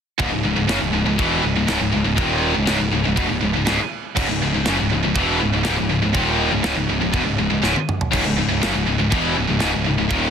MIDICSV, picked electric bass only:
0, 0, Header, 1, 3, 480
1, 0, Start_track
1, 0, Key_signature, 4, "minor"
1, 0, Tempo, 495458
1, 184, Time_signature, 4, 2, 24, 8
1, 9981, End_track
2, 0, Start_track
2, 0, Title_t, "Picked electric bass"
2, 0, Program_c, 0, 34
2, 194, Note_on_c, 0, 25, 93
2, 302, Note_off_c, 0, 25, 0
2, 321, Note_on_c, 0, 25, 75
2, 426, Note_off_c, 0, 25, 0
2, 437, Note_on_c, 0, 25, 85
2, 539, Note_off_c, 0, 25, 0
2, 545, Note_on_c, 0, 25, 85
2, 654, Note_off_c, 0, 25, 0
2, 659, Note_on_c, 0, 30, 106
2, 775, Note_off_c, 0, 30, 0
2, 783, Note_on_c, 0, 25, 77
2, 888, Note_off_c, 0, 25, 0
2, 893, Note_on_c, 0, 25, 90
2, 1012, Note_off_c, 0, 25, 0
2, 1018, Note_on_c, 0, 25, 79
2, 1135, Note_off_c, 0, 25, 0
2, 1152, Note_on_c, 0, 28, 98
2, 1375, Note_off_c, 0, 28, 0
2, 1391, Note_on_c, 0, 25, 73
2, 1503, Note_off_c, 0, 25, 0
2, 1516, Note_on_c, 0, 25, 81
2, 1625, Note_off_c, 0, 25, 0
2, 1632, Note_on_c, 0, 25, 96
2, 1744, Note_off_c, 0, 25, 0
2, 1752, Note_on_c, 0, 25, 82
2, 1864, Note_off_c, 0, 25, 0
2, 1879, Note_on_c, 0, 25, 81
2, 1980, Note_off_c, 0, 25, 0
2, 1986, Note_on_c, 0, 25, 81
2, 2101, Note_off_c, 0, 25, 0
2, 2116, Note_on_c, 0, 27, 100
2, 2450, Note_off_c, 0, 27, 0
2, 2489, Note_on_c, 0, 25, 80
2, 2587, Note_off_c, 0, 25, 0
2, 2593, Note_on_c, 0, 25, 98
2, 2705, Note_off_c, 0, 25, 0
2, 2713, Note_on_c, 0, 25, 88
2, 2826, Note_off_c, 0, 25, 0
2, 2833, Note_on_c, 0, 25, 93
2, 2946, Note_off_c, 0, 25, 0
2, 2971, Note_on_c, 0, 25, 79
2, 3068, Note_off_c, 0, 25, 0
2, 3074, Note_on_c, 0, 28, 97
2, 3186, Note_off_c, 0, 28, 0
2, 3206, Note_on_c, 0, 25, 84
2, 3313, Note_off_c, 0, 25, 0
2, 3317, Note_on_c, 0, 25, 81
2, 3428, Note_off_c, 0, 25, 0
2, 3447, Note_on_c, 0, 25, 83
2, 3553, Note_off_c, 0, 25, 0
2, 3576, Note_on_c, 0, 25, 100
2, 3678, Note_off_c, 0, 25, 0
2, 4034, Note_on_c, 0, 25, 101
2, 4147, Note_off_c, 0, 25, 0
2, 4153, Note_on_c, 0, 25, 81
2, 4267, Note_off_c, 0, 25, 0
2, 4286, Note_on_c, 0, 25, 86
2, 4393, Note_off_c, 0, 25, 0
2, 4407, Note_on_c, 0, 25, 79
2, 4514, Note_off_c, 0, 25, 0
2, 4533, Note_on_c, 0, 30, 103
2, 4637, Note_off_c, 0, 30, 0
2, 4660, Note_on_c, 0, 25, 88
2, 4761, Note_off_c, 0, 25, 0
2, 4783, Note_on_c, 0, 25, 89
2, 4882, Note_off_c, 0, 25, 0
2, 4899, Note_on_c, 0, 25, 88
2, 4992, Note_off_c, 0, 25, 0
2, 4998, Note_on_c, 0, 28, 93
2, 5220, Note_off_c, 0, 28, 0
2, 5257, Note_on_c, 0, 25, 73
2, 5359, Note_off_c, 0, 25, 0
2, 5370, Note_on_c, 0, 25, 83
2, 5475, Note_off_c, 0, 25, 0
2, 5502, Note_on_c, 0, 25, 91
2, 5601, Note_off_c, 0, 25, 0
2, 5624, Note_on_c, 0, 25, 81
2, 5722, Note_off_c, 0, 25, 0
2, 5730, Note_on_c, 0, 25, 84
2, 5835, Note_off_c, 0, 25, 0
2, 5853, Note_on_c, 0, 25, 78
2, 5953, Note_off_c, 0, 25, 0
2, 5959, Note_on_c, 0, 27, 93
2, 6291, Note_off_c, 0, 27, 0
2, 6318, Note_on_c, 0, 25, 85
2, 6428, Note_off_c, 0, 25, 0
2, 6440, Note_on_c, 0, 25, 109
2, 6548, Note_off_c, 0, 25, 0
2, 6557, Note_on_c, 0, 25, 79
2, 6667, Note_off_c, 0, 25, 0
2, 6679, Note_on_c, 0, 25, 88
2, 6788, Note_off_c, 0, 25, 0
2, 6813, Note_on_c, 0, 25, 81
2, 6913, Note_off_c, 0, 25, 0
2, 6919, Note_on_c, 0, 28, 91
2, 7027, Note_off_c, 0, 28, 0
2, 7043, Note_on_c, 0, 25, 81
2, 7149, Note_off_c, 0, 25, 0
2, 7159, Note_on_c, 0, 25, 78
2, 7267, Note_off_c, 0, 25, 0
2, 7280, Note_on_c, 0, 25, 80
2, 7383, Note_off_c, 0, 25, 0
2, 7389, Note_on_c, 0, 25, 91
2, 7501, Note_off_c, 0, 25, 0
2, 7883, Note_on_c, 0, 25, 94
2, 7984, Note_off_c, 0, 25, 0
2, 7990, Note_on_c, 0, 25, 79
2, 8101, Note_off_c, 0, 25, 0
2, 8105, Note_on_c, 0, 25, 81
2, 8218, Note_off_c, 0, 25, 0
2, 8231, Note_on_c, 0, 25, 79
2, 8341, Note_off_c, 0, 25, 0
2, 8358, Note_on_c, 0, 30, 101
2, 8464, Note_off_c, 0, 30, 0
2, 8482, Note_on_c, 0, 25, 81
2, 8586, Note_off_c, 0, 25, 0
2, 8601, Note_on_c, 0, 25, 89
2, 8706, Note_off_c, 0, 25, 0
2, 8713, Note_on_c, 0, 25, 79
2, 8821, Note_off_c, 0, 25, 0
2, 8833, Note_on_c, 0, 28, 96
2, 9052, Note_off_c, 0, 28, 0
2, 9080, Note_on_c, 0, 25, 71
2, 9182, Note_off_c, 0, 25, 0
2, 9187, Note_on_c, 0, 25, 82
2, 9297, Note_off_c, 0, 25, 0
2, 9324, Note_on_c, 0, 25, 101
2, 9426, Note_off_c, 0, 25, 0
2, 9458, Note_on_c, 0, 25, 79
2, 9553, Note_off_c, 0, 25, 0
2, 9571, Note_on_c, 0, 25, 90
2, 9669, Note_off_c, 0, 25, 0
2, 9685, Note_on_c, 0, 25, 85
2, 9785, Note_off_c, 0, 25, 0
2, 9791, Note_on_c, 0, 27, 93
2, 9981, Note_off_c, 0, 27, 0
2, 9981, End_track
3, 0, Start_track
3, 0, Title_t, "Muted picked electric bass strokes"
3, 3696, Note_on_c, 9, 29, 40
3, 3793, Note_off_c, 9, 29, 0
3, 7520, Note_on_c, 9, 29, 41
3, 7617, Note_off_c, 9, 29, 0
3, 9981, End_track
0, 0, End_of_file